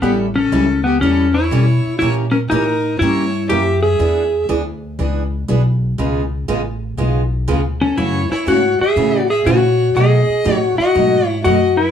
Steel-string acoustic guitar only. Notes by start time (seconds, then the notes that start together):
0.03 E3 G3 C#4 E4 A4
0.52 E3 G3 C#4 E4 A4
1.02 E3 G3 C#4 E4 A4
1.51 E3 G3 C#4 E4 A4
2.01 E3 A#3 C#4 G4 A#4
2.51 E3 A#3 C#4 G4 A#4
3.02 E3 A#3 C#4 G4 A#4
3.49 E3 A#3 C#4 G4 A#4
3.99 E3 B3 D4 G#4
4.49 E3 B3 D4 G#4
4.99 E3 B3 D4 G#4
5.48 E3 B3 D4 G#4
5.98 C#3 G#3 B3 F4 G#4
6.48 C#3 G#3 B3 F4 G#4
6.97 C#3 G#3 B3 F4 G#4
7.48 C#3 G#3 B3 F4 G#4
7.97 C#3 E3 A3 C#4 F#4
8.47 C#3 E3 A3 C#4 F#4
8.96 C#3 E3 A3 C#4 F#4
9.46 C#3 E3 A3 C#4 F#4
9.96 B2 F#3 A3 D#4 F#4
10.44 B2 F#3 A3 D#4 F#4
10.95 B2 F#3 A3 D#4 F#4
11.45 B2 F#3 A3 D#4 F#4